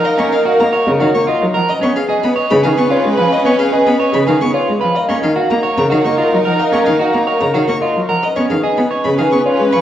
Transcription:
X:1
M:3/4
L:1/16
Q:1/4=110
K:F#
V:1 name="Violin"
d c' e z a z2 e c' z3 | d c' e z b z b e c' z3 | d c' e z b z b e c' z3 | d c' e z a z a e c' z3 |
d c' e z a z a e c' z3 | d c' e z b z b e c' z2 c' |]
V:2 name="Grand piano"
e d A e a e A c A d A f | d c G d g d G B G c G e | d c G d g d G B G c G e | e d A e a e A c A d A f |
e d A e a e A c A d A f | d c G d g d G B G c G e |]
V:3 name="Clarinet"
A8- A3 z | B12- | B8- B3 z | A12- |
A8- A3 z | B12 |]
V:4 name="Clean electric guitar"
z C z F z c z F z E z A | z C z G z c z G z E z B | z C z G z c z G z E z B | z C z F z c z F z E z A |
z C z F z c z F z E z A | z C z G z c z G z E z B |]
V:5 name="String section"
[DA]8- [DA]3 z | [CB]12- | [CB]8- [CB]3 z | [DA]12- |
[DA]8- [DA]3 z | [CB]12 |]
V:6 name="Cello" clef=bass
z A, z2 A, z C, D, A, z F, E, | z B, z2 B, z C, D, B, z G, E, | z B, z2 B, z C, D, B, z G, E, | z A, D, z A, z C, D, A, z F, E, |
z A, D, z A, z C, D, A, z F, E, | z B, D, z B, z C, D, B, z G, E, |]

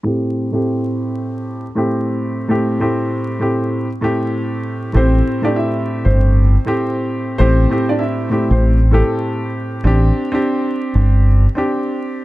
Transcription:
X:1
M:4/4
L:1/16
Q:"Swing 16ths" 1/4=98
K:Am
V:1 name="Upright piano"
z16 | z16 | [Cc]3 [Dd] [Ee]3 [Cc]6 z3 | [Cc]3 [Dd] [Ee]3 [Cc]3 [A,A]3 z3 |
z16 |]
V:2 name="Grand piano"
[A,,A,CG]3 [A,,A,CG]6- [A,,A,CG] z [A,,A,CG]4- [A,,A,CG] | [A,,A,CG]2 [A,,A,CG]4 [A,,A,CG]3 z [A,,A,CG]6 | [A,,A,CG]3 [A,,A,CG]6- [A,,A,CG] z [A,,A,CG]4- [A,,A,CG] | [A,,A,CG]2 [A,,A,CG]4 [A,,A,CG]3 z [A,,A,CG]6 |
[CDG]3 [CDG]6- [CDG] z [CDG]4- [CDG] |]
V:3 name="Fingered electric bass" clef=bass
z16 | z16 | A,,,2 z4 z G,,,4 z4 z | A,,,2 z4 z A,,,4 z4 z |
A,,,2 z4 z G,,,4 z4 z |]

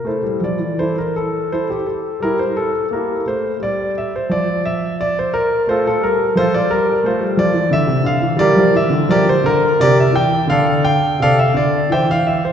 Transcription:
X:1
M:3/4
L:1/16
Q:1/4=86
K:F
V:1 name="Grand piano"
[EAc]2 d2 [EAc] B A2 [EAc] G A2 | [EGB] c A2 [EGB]2 c2 d2 e c | d2 e2 d c B2 [FAc] A B2 | [FAc] d B2 [FAc]2 d2 e2 f z |
[GBd]2 e2 [GBd] c B2 [GBd] e g2 | [Adf]2 g2 [Adf] e d2 [ceg] f e c |]
V:2 name="Grand piano" clef=bass
A, G, F, E,8- E, | G,4 B,2 A,2 G,4 | F,8 A,2 G,2 | F,2 G,2 A, G, F, E, D, C, D, E, |
G, F, E, D, F,2 D,2 C,2 E,2 | D,4 C,2 D,2 E,4 |]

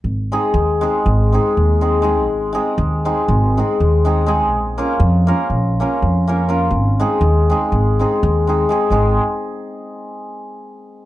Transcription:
X:1
M:9/8
L:1/8
Q:3/8=81
K:Ab
V:1 name="Hammered dulcimer"
z [A,CEA] z [A,CEA] z [A,CEA] z [A,CEA] [A,CEA] | z [A,CEA] z [A,CEA] z [A,CEA] z [A,CEA] [A,CEA] | z [B,DFB] z [B,DFB] z [B,DFB] z [B,DFB] [B,DFB] | z [A,CEA] z [A,CEA] z [A,CEA] z [A,CEA] [A,CEA] |
[A,CEA] z8 |]
V:2 name="Upright bass" clef=bass
A,,,2 E,,2 A,,,2 E,,3 | A,,,2 E,,2 A,,,2 E,,3 | B,,,2 F,,2 B,,,2 F,,3 | A,,,2 E,,2 A,,,2 E,,3 |
A,,, z8 |]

